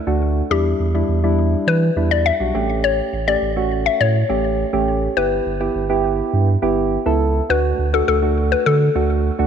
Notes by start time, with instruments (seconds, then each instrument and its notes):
Already playing: synth pluck A4
0.07 sub bass D2, synth keys A3 D4 F#4
0.50 sub bass E2, synth keys G3 D4 E4, synth pluck G4
0.80 sub bass E2
0.94 synth keys G3 D4 E4
1.09 sub bass E2
1.23 synth keys G3 D4 E4
1.67 sub bass E3, synth pluck B4
1.96 sub bass E2, synth keys G3 D4 E4
2.11 synth pluck D5
2.26 synth pluck E5
2.40 sub bass B1, synth keys G3 D4 F#4
2.54 sub bass A1, synth keys A3 C#4 G4
2.84 synth pluck C#5
3.13 sub bass A1
3.27 synth keys A3 C#4 G4, synth pluck D5
3.42 sub bass A1
3.56 synth keys A3 C#4 F#4
3.86 synth pluck E5
4.00 sub bass A2, synth pluck C#5
4.29 sub bass A1, synth keys A3 C#4 G4
4.73 sub bass A1, synth keys A3 C#4 G4
5.17 sub bass G1, synth keys B3 E4 G4, synth pluck B4
5.46 sub bass G1
5.60 synth keys B3 E4 G4
5.75 sub bass G1
5.89 synth keys B3 E4 G4
6.33 sub bass G2
6.62 sub bass G1, synth keys B3 E4 G4
7.06 sub bass C#2, synth keys B3 E4 A4
7.49 sub bass D2, synth keys A3 D4 F#4, synth pluck B4
7.79 sub bass D2
7.93 synth keys A3 D4 F#4, synth pluck A4
8.08 sub bass D2, synth pluck A4
8.22 synth keys A3 D4 F#4
8.52 synth pluck B4
8.66 sub bass D3, synth pluck A4
8.95 sub bass D2, synth keys A3 D4 F#4
9.39 sub bass D2, synth keys A3 D4 F#4